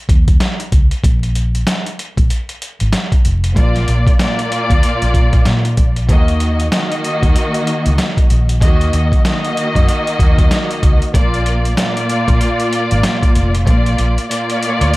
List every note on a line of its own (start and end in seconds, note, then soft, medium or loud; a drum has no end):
0.09 0.37 D#2 medium
0.09 kick medium
0.09 closed hi-hat medium
0.28 kick medium
0.28 closed hi-hat medium
0.40 snare loud
0.40 closed hi-hat medium
0.60 closed hi-hat medium
0.72 0.89 C#2 medium
0.72 kick medium
0.72 closed hi-hat medium
0.91 closed hi-hat medium
1.04 1.63 A#1 loud
1.04 kick loud
1.04 closed hi-hat medium
1.23 closed hi-hat medium
1.35 closed hi-hat medium
1.55 closed hi-hat medium
1.67 snare loud
1.67 closed hi-hat medium
1.86 closed hi-hat medium
1.99 closed hi-hat medium
2.17 2.29 A#1 medium
2.17 kick medium
2.17 closed hi-hat medium
2.30 closed hi-hat medium
2.49 closed hi-hat medium
2.62 closed hi-hat medium
2.80 2.92 G#1 medium
2.80 closed hi-hat medium
2.93 snare loud
2.93 closed hi-hat medium
3.12 kick medium
3.12 closed hi-hat medium
3.25 3.53 F1 medium
3.25 closed hi-hat medium
3.44 closed hi-hat medium
3.55 3.85 A#1 loud
3.55 4.15 A#2 medium
3.55 4.15 A#3 medium
3.55 4.15 F4 medium
3.55 4.15 D5 loud
3.55 kick loud
3.55 closed hi-hat medium
3.75 snare soft
3.75 closed hi-hat medium
3.88 4.05 A#1 medium
3.88 closed hi-hat medium
4.07 kick medium
4.07 closed hi-hat medium
4.18 5.96 A#2 loud
4.18 5.96 A#3 loud
4.18 5.97 F4 loud
4.18 5.97 D5 loud
4.18 snare loud
4.18 closed hi-hat medium
4.39 closed hi-hat medium
4.52 closed hi-hat medium
4.70 4.82 D2 medium
4.70 kick medium
4.70 closed hi-hat medium
4.83 closed hi-hat medium
5.02 5.13 A#1 medium
5.02 closed hi-hat medium
5.14 5.43 A#2 loud
5.14 kick medium
5.14 closed hi-hat medium
5.33 kick medium
5.33 closed hi-hat soft
5.45 5.75 A#2 medium
5.45 snare loud
5.45 closed hi-hat medium
5.65 closed hi-hat medium
5.77 6.06 A#1 medium
5.77 kick medium
5.77 closed hi-hat medium
5.96 closed hi-hat medium
6.09 6.68 D#2 medium
6.09 6.68 D#3 medium
6.09 6.68 A#3 medium
6.09 6.69 F#4 medium
6.09 6.69 D#5 loud
6.09 kick loud
6.09 closed hi-hat medium
6.28 closed hi-hat medium
6.40 closed hi-hat medium
6.60 closed hi-hat medium
6.72 8.49 D#3 loud
6.72 8.49 A#3 loud
6.72 8.50 F#4 loud
6.72 8.50 D#5 loud
6.72 snare loud
6.72 closed hi-hat medium
6.92 closed hi-hat medium
7.04 closed hi-hat medium
7.23 7.34 D#2 medium
7.23 kick medium
7.23 closed hi-hat medium
7.36 closed hi-hat medium
7.54 closed hi-hat medium
7.67 closed hi-hat medium
7.86 7.97 C#2 loud
7.86 closed hi-hat medium
7.98 snare loud
7.98 closed hi-hat medium
8.17 kick medium
8.17 closed hi-hat medium
8.30 8.59 A#1 medium
8.30 closed hi-hat medium
8.49 closed hi-hat medium
8.61 8.90 D#2 loud
8.61 9.21 D#3 medium
8.61 9.21 A#3 medium
8.61 9.21 F#4 medium
8.61 9.21 D#5 loud
8.61 kick loud
8.61 closed hi-hat medium
8.81 closed hi-hat soft
8.93 9.10 D#2 loud
8.93 closed hi-hat medium
9.12 kick medium
9.12 closed hi-hat medium
9.25 11.02 D#3 loud
9.25 11.02 A#3 loud
9.25 11.03 F#4 loud
9.25 11.03 D#5 loud
9.25 snare loud
9.25 closed hi-hat medium
9.45 closed hi-hat medium
9.57 closed hi-hat medium
9.75 9.87 F#2 loud
9.75 kick medium
9.75 closed hi-hat medium
9.89 closed hi-hat medium
10.07 closed hi-hat medium
10.19 10.48 D#2 medium
10.19 kick loud
10.19 closed hi-hat medium
10.38 kick medium
10.38 closed hi-hat medium
10.51 snare loud
10.51 closed hi-hat medium
10.71 closed hi-hat medium
10.83 11.00 C#2 medium
10.83 kick loud
10.83 closed hi-hat medium
11.02 closed hi-hat medium
11.14 11.73 A#1 loud
11.14 11.73 A#2 medium
11.14 11.73 A#3 medium
11.14 11.73 F4 medium
11.14 11.73 D5 loud
11.14 kick loud
11.14 closed hi-hat medium
11.34 closed hi-hat medium
11.46 closed hi-hat medium
11.65 closed hi-hat medium
11.77 13.54 A#2 loud
11.77 13.55 A#3 loud
11.77 13.55 F4 loud
11.77 13.55 D5 loud
11.77 snare loud
11.77 closed hi-hat medium
11.97 closed hi-hat medium
12.10 closed hi-hat medium
12.28 12.39 A#1 medium
12.28 kick medium
12.28 closed hi-hat medium
12.41 closed hi-hat medium
12.60 closed hi-hat medium
12.73 closed hi-hat medium
12.91 13.03 G#1 medium
12.91 closed hi-hat medium
13.03 snare loud
13.03 closed hi-hat medium
13.23 kick medium
13.23 closed hi-hat medium
13.35 13.64 F1 medium
13.35 closed hi-hat medium
13.55 closed hi-hat medium
13.66 13.95 A#1 loud
13.66 14.25 A#2 medium
13.66 14.25 A#3 medium
13.66 14.26 F4 medium
13.66 14.26 D5 loud
13.66 kick loud
13.66 closed hi-hat medium
13.86 closed hi-hat medium
13.98 14.16 A#1 medium
13.98 closed hi-hat medium
14.18 closed hi-hat medium
14.29 14.97 A#2 loud
14.29 14.97 A#3 loud
14.29 14.97 F4 loud
14.29 14.97 D5 loud
14.29 closed hi-hat medium
14.50 closed hi-hat medium
14.63 closed hi-hat medium
14.81 14.92 D2 medium
14.81 closed hi-hat medium
14.94 closed hi-hat medium